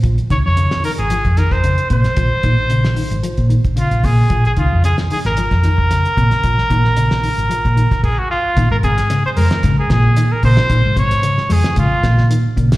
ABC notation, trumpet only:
X:1
M:4/4
L:1/16
Q:"Swing 16ths" 1/4=113
K:Bbm
V:1 name="Trumpet"
z2 d d3 B A3 B c3 c2- | c8- c2 z2 F2 A2- | A A F2 A2 A B8- B- | B12 A G F2- |
F B A3 c B3 A A3 B c2- | c2 d4 A2 F4 z4 |]